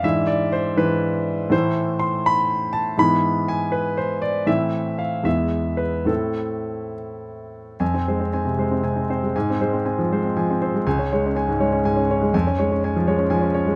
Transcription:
X:1
M:6/8
L:1/16
Q:3/8=80
K:Am
V:1 name="Grand piano"
e2 d2 c2 B6 | c4 c'2 b4 a2 | b4 ^g2 B2 c2 d2 | e4 f2 e4 B2 |
A6 z6 | [K:Fm] a2 c2 a2 c2 a2 c2 | a2 c2 a2 c2 a2 c2 | a2 d2 a2 d2 a2 d2 |
a2 d2 a2 d2 a2 d2 |]
V:2 name="Grand piano"
[^G,,E,DE]6 [G,,E,DE]6 | [A,,E,A,E]12 | [^G,,E,B,E]12 | [A,,E,CE]6 [E,,^G,B,E]6 |
[A,,A,CE]12 | [K:Fm] F,, C A, C C C, A, C C, C C A, | A,, C A, C C F, A, C F, C C A, | D,, D A, D D A,, A, D A,, D D A, |
F,, D A, D D F, A, D F, D D A, |]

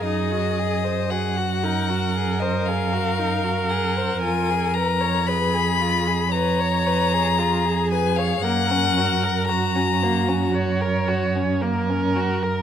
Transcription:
X:1
M:4/4
L:1/16
Q:1/4=57
K:F#
V:1 name="Violin"
d4 f4- f d e4 f2 | g2 a2 b4 a6 g e | f4 a4 z8 |]
V:2 name="Viola"
G4 F2 A8- A2- | A4 G4 c4 G4 | A4 F4 c4 A4 |]
V:3 name="Violin"
D F G ^B G F D F G B G F D F G B | E G B c B G E G B c B G E G B c | A, C F A F C A, C F A F C A, C F A |]
V:4 name="Cello" clef=bass
F,,16 | E,,16 | F,,16 |]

